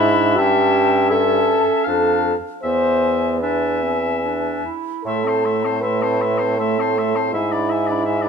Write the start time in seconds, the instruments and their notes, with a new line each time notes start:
Already playing: bassoon G#2, clarinet D4, french horn E4, oboe E5, flute B5
0.37 bassoon G2, clarinet C#4, french horn G4, oboe E5, flute A5
1.10 clarinet C#4, french horn A4, oboe E5, flute A5
1.85 bassoon F2, clarinet D4, french horn A4, oboe F5, flute A5
2.62 bassoon E2, clarinet B3, french horn C5, oboe E5, flute G#5
3.40 clarinet D4, french horn B4, oboe E5, flute G#5
3.83 clarinet C4
4.25 clarinet D4
4.65 clarinet E4
5.04 bassoon A2, clarinet A3, french horn A4, oboe E5, flute C6
5.24 clarinet C4, oboe C5, flute A5
5.44 clarinet A3, oboe E5, flute C6
5.63 clarinet C4, oboe C5, flute A5
5.81 clarinet A3, french horn B4, oboe E5, flute C6
6.02 clarinet C4, oboe C5, flute A5
6.21 clarinet A3, oboe E5, flute C6
6.38 clarinet C4, oboe C5, flute A5
6.58 clarinet A3, french horn A4, oboe E5, flute C6
6.78 clarinet C4, oboe C5, flute A5
6.97 clarinet A3, oboe E5, flute C6
7.15 clarinet C4, oboe C5, flute A5
7.32 bassoon G#2, french horn E4, clarinet E4, oboe E5, flute G#5
7.51 clarinet D4, oboe D5, flute B5
7.70 clarinet E4, oboe E5, flute G#5
7.86 clarinet D4, oboe D5
7.91 flute B5
8.05 clarinet E4, oboe E5, flute G#5
8.21 clarinet D4, oboe D5, flute B5